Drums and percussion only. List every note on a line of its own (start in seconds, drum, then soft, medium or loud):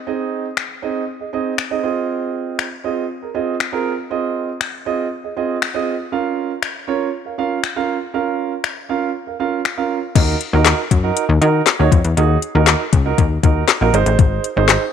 0.57 finger snap loud
1.58 finger snap loud
2.59 finger snap loud
3.60 finger snap loud
4.61 finger snap loud
5.62 finger snap loud
6.62 finger snap loud
7.64 finger snap loud
8.64 finger snap loud
9.65 finger snap loud
10.15 kick loud
10.15 closed hi-hat medium
10.15 crash loud
10.41 closed hi-hat medium
10.65 snare loud
10.65 clap loud
10.65 closed hi-hat loud
10.91 kick medium
10.91 closed hi-hat medium
11.17 closed hi-hat medium
11.42 closed hi-hat medium
11.66 snare medium
11.66 clap loud
11.66 closed hi-hat medium
11.92 kick medium
11.92 closed hi-hat medium
12.04 closed hi-hat medium
12.17 closed hi-hat medium
12.42 closed hi-hat medium
12.67 snare medium
12.67 clap loud
12.67 closed hi-hat loud
12.93 kick medium
12.93 closed hi-hat medium
13.18 kick medium
13.18 closed hi-hat medium
13.43 kick loud
13.43 closed hi-hat medium
13.68 snare medium
13.68 clap loud
13.68 closed hi-hat medium
13.94 closed hi-hat medium
14.06 closed hi-hat medium
14.19 kick loud
14.19 closed hi-hat medium
14.44 closed hi-hat medium
14.68 snare medium
14.68 clap loud
14.68 closed hi-hat loud